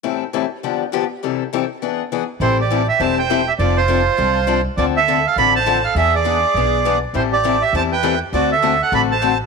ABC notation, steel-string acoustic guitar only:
X:1
M:4/4
L:1/8
Q:"Swing" 1/4=203
K:Am
V:1 name="Steel-string acoustic guitar"
[A,,E,G,CEA] z [A,,E,G,CEA] z [G,,D,F,B,DG] z [G,,D,F,B,DG] z | [C,E,G,CEA] z [C,E,G,CEA] z [E,B,D^G] z [E,B,DG] z | [E,G,CEA] z [E,G,CEA] z [E,G,CEA] z [E,G,CEA] z | [F,CDA] z [F,CDA] z [F,CDA] z [F,CDA] z |
[D,F,CDA] z [D,F,CDA] z [D,F,CDA] z [D,F,CDA] z | [E,B,D^G] z [E,B,DG] z [E,B,DG] z [E,B,DG] z | [E,G,CEA] z [E,G,CEA] z [E,G,CEA] z [E,G,CEA] z | [D,A,C^FA] z [D,A,CFA] z [D,A,CFA] z [D,A,CFA] z |]